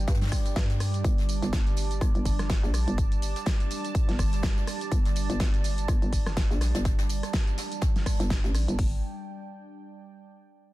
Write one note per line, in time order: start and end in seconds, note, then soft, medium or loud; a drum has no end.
0.00 8.75 G3 medium
0.00 8.75 D4 medium
0.00 8.75 D5 medium
0.00 1.03 G5 medium
0.08 0.30 G2 medium
0.08 kick loud
0.08 snare medium
0.08 closed hi-hat medium
0.08 tambourine soft
0.14 snare medium
0.14 closed hi-hat medium
0.21 snare medium
0.21 snare soft
0.21 closed hi-hat soft
0.21 closed hi-hat medium
0.21 tambourine soft
0.26 snare medium
0.26 closed hi-hat medium
0.32 kick medium
0.32 cross-stick medium
0.32 open hi-hat loud
0.32 open hi-hat medium
0.32 tambourine medium
0.45 snare soft
0.45 closed hi-hat soft
0.45 tambourine soft
0.56 1.03 G2 medium
0.56 kick loud
0.56 snare loud
0.56 closed hi-hat medium
0.56 tambourine soft
0.69 snare medium
0.69 closed hi-hat soft
0.69 tambourine soft
0.80 cross-stick medium
0.80 closed hi-hat medium
0.80 open hi-hat loud
0.80 tambourine medium
0.94 closed hi-hat soft
0.94 tambourine soft
1.04 1.40 G1 loud
1.04 8.77 A5 medium
1.04 kick loud
1.04 closed hi-hat medium
1.04 tambourine soft
1.18 snare medium
1.18 closed hi-hat soft
1.18 tambourine soft
1.29 closed hi-hat medium
1.29 open hi-hat loud
1.29 tambourine medium
1.42 1.51 G1 loud
1.42 snare medium
1.42 closed hi-hat soft
1.42 tambourine soft
1.53 2.00 G1 loud
1.53 kick loud
1.53 snare loud
1.53 closed hi-hat medium
1.53 tambourine soft
1.67 closed hi-hat soft
1.67 tambourine soft
1.76 closed hi-hat medium
1.76 open hi-hat loud
1.76 tambourine medium
1.91 closed hi-hat soft
1.91 tambourine soft
2.01 2.13 G1 medium
2.01 kick loud
2.01 cross-stick medium
2.01 closed hi-hat medium
2.01 tambourine soft
2.15 2.61 G1 loud
2.15 closed hi-hat soft
2.15 tambourine soft
2.25 kick medium
2.25 closed hi-hat medium
2.25 open hi-hat loud
2.25 tambourine medium
2.39 cross-stick medium
2.39 snare soft
2.39 closed hi-hat soft
2.39 tambourine soft
2.49 kick loud
2.49 snare loud
2.49 closed hi-hat medium
2.49 tambourine soft
2.63 2.85 A#1 loud
2.63 snare soft
2.63 tambourine soft
2.73 cross-stick medium
2.73 closed hi-hat medium
2.73 open hi-hat loud
2.73 tambourine medium
2.88 3.34 G1 medium
2.88 closed hi-hat medium
2.88 tambourine soft
2.98 kick loud
2.98 closed hi-hat medium
2.98 tambourine soft
3.12 closed hi-hat soft
3.12 tambourine soft
3.22 closed hi-hat medium
3.22 open hi-hat loud
3.22 tambourine medium
3.36 snare soft
3.36 closed hi-hat medium
3.36 tambourine soft
3.46 kick loud
3.46 snare loud
3.46 closed hi-hat medium
3.46 tambourine soft
3.60 closed hi-hat soft
3.60 tambourine soft
3.70 closed hi-hat medium
3.70 open hi-hat loud
3.70 tambourine medium
3.85 closed hi-hat medium
3.85 tambourine soft
3.95 kick loud
3.95 closed hi-hat medium
3.95 tambourine soft
4.09 4.55 G1 loud
4.09 snare soft
4.09 closed hi-hat soft
4.09 tambourine soft
4.18 kick medium
4.18 cross-stick medium
4.18 open hi-hat medium
4.18 open hi-hat loud
4.18 tambourine medium
4.33 snare medium
4.33 closed hi-hat medium
4.33 tambourine soft
4.43 kick loud
4.43 snare loud
4.43 closed hi-hat medium
4.43 tambourine soft
4.57 snare medium
4.57 tambourine soft
4.67 cross-stick medium
4.67 closed hi-hat medium
4.67 open hi-hat loud
4.67 tambourine medium
4.81 closed hi-hat medium
4.81 tambourine soft
4.92 5.27 G1 loud
4.92 kick loud
4.92 closed hi-hat loud
4.92 closed hi-hat medium
4.92 tambourine soft
5.05 snare medium
5.05 closed hi-hat soft
5.05 tambourine soft
5.16 closed hi-hat medium
5.16 open hi-hat loud
5.16 tambourine medium
5.30 5.38 G1 medium
5.30 snare soft
5.30 closed hi-hat medium
5.30 tambourine soft
5.40 5.87 G1 loud
5.40 kick loud
5.40 snare loud
5.40 closed hi-hat medium
5.40 tambourine soft
5.54 closed hi-hat soft
5.54 tambourine soft
5.64 closed hi-hat medium
5.64 open hi-hat loud
5.64 tambourine medium
5.78 closed hi-hat medium
5.78 tambourine soft
5.88 6.00 G1 loud
5.88 kick loud
5.88 cross-stick medium
5.88 closed hi-hat medium
5.88 tambourine soft
6.02 6.48 G1 loud
6.02 closed hi-hat soft
6.02 tambourine soft
6.12 kick medium
6.12 closed hi-hat medium
6.12 open hi-hat loud
6.12 tambourine medium
6.26 cross-stick medium
6.26 snare soft
6.26 closed hi-hat medium
6.26 tambourine soft
6.36 kick loud
6.36 snare loud
6.36 closed hi-hat medium
6.36 tambourine soft
6.51 6.73 A#1 loud
6.51 snare soft
6.51 tambourine soft
6.61 cross-stick medium
6.61 snare loud
6.61 closed hi-hat medium
6.61 open hi-hat loud
6.61 tambourine medium
6.75 7.21 G1 medium
6.75 snare loud
6.75 closed hi-hat medium
6.75 tambourine soft
6.85 kick loud
6.85 snare loud
6.85 closed hi-hat medium
6.85 tambourine soft
6.99 snare loud
6.99 closed hi-hat soft
6.99 closed hi-hat medium
6.99 tambourine soft
7.09 closed hi-hat medium
7.09 open hi-hat loud
7.09 tambourine medium
7.23 cross-stick medium
7.23 snare soft
7.23 closed hi-hat medium
7.23 tambourine soft
7.33 kick loud
7.33 snare loud
7.33 closed hi-hat medium
7.33 tambourine soft
7.47 closed hi-hat soft
7.47 tambourine soft
7.58 snare loud
7.58 closed hi-hat medium
7.58 open hi-hat loud
7.58 tambourine medium
7.72 closed hi-hat medium
7.72 tambourine soft
7.81 kick loud
7.81 snare loud
7.81 closed hi-hat medium
7.81 tambourine soft
7.96 snare soft
7.96 closed hi-hat soft
7.96 tambourine soft
8.06 kick medium
8.06 cross-stick medium
8.06 open hi-hat medium
8.06 open hi-hat loud
8.06 tambourine medium
8.20 8.42 G1 loud
8.20 snare medium
8.20 closed hi-hat medium
8.20 tambourine soft
8.30 kick loud
8.30 snare loud
8.30 closed hi-hat medium
8.30 tambourine soft
8.44 8.66 A1 loud
8.44 snare medium
8.44 closed hi-hat soft
8.44 tambourine soft
8.55 cross-stick medium
8.55 closed hi-hat medium
8.55 open hi-hat loud
8.55 tambourine medium
8.68 8.77 G1 medium
8.68 closed hi-hat medium
8.68 tambourine soft
8.79 9.01 G1 loud
8.79 9.01 G3 medium
8.79 9.01 D4 medium
8.79 9.01 D5 medium
8.79 9.01 G5 medium
8.79 kick loud
8.79 open hi-hat medium